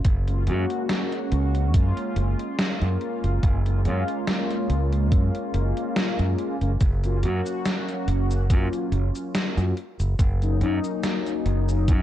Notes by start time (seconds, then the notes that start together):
0.05 F#1, kick, closed hi-hat
0.27 G#3 A#3 C#4 F4, closed hi-hat
0.46 F#2 G#3 A#3 C#4 F#4, closed hi-hat
0.70 closed hi-hat
0.89 snare, closed hi-hat
1.12 closed hi-hat
1.32 C#2, closed hi-hat
1.55 closed hi-hat
1.73 F#2 G#3 A#3 C#4 F4, kick, closed hi-hat
1.97 closed hi-hat
2.16 F#1, closed hi-hat
2.39 closed hi-hat
2.58 snare, closed hi-hat
2.81 F#2, closed hi-hat
3.01 closed hi-hat
3.24 F#1, closed hi-hat
3.43 F#1, kick, closed hi-hat
3.65 G#3 A#3 C#4 F4, closed hi-hat
3.84 F#2 G#3 A#3 C#4 F4, closed hi-hat
4.08 closed hi-hat
4.27 snare, closed hi-hat
4.50 closed hi-hat
4.70 C#2, closed hi-hat
4.93 closed hi-hat
5.12 F#2, kick, closed hi-hat
5.35 closed hi-hat
5.54 F#1, closed hi-hat
5.77 closed hi-hat
5.96 snare, closed hi-hat
6.19 F#2, closed hi-hat
6.39 closed hi-hat
6.61 F#1 G#3 A#3 C#4 F4, closed hi-hat
6.81 F#1, kick, closed hi-hat, cabasa
7.03 F#3 A#3 C#4 F4, closed hi-hat, cabasa
7.22 F#2 F#3 A#3 C#4 F#4, closed hi-hat
7.46 closed hi-hat, cabasa
7.65 snare, closed hi-hat, cabasa
7.88 closed hi-hat, cabasa
8.07 F#1, closed hi-hat
8.31 closed hi-hat, cabasa
8.48 F#2 F#3 A#3 C#4 F4, kick, closed hi-hat, cabasa
8.73 closed hi-hat, cabasa
8.92 F#1, closed hi-hat
9.15 closed hi-hat, cabasa
9.35 snare, closed hi-hat, cabasa
9.57 F#2, closed hi-hat, cabasa
9.77 closed hi-hat
10.00 F#1, closed hi-hat, cabasa
10.19 F#1, kick, closed hi-hat, cabasa
10.41 F#3 A#3 C#4 D#4, closed hi-hat, cabasa
10.60 F#2 F#3 A#3 C#4 D#4, closed hi-hat
10.84 closed hi-hat, cabasa
11.03 snare, closed hi-hat, cabasa
11.26 closed hi-hat, cabasa
11.46 F#1, closed hi-hat
11.69 closed hi-hat, cabasa
11.88 F#2, kick, closed hi-hat, cabasa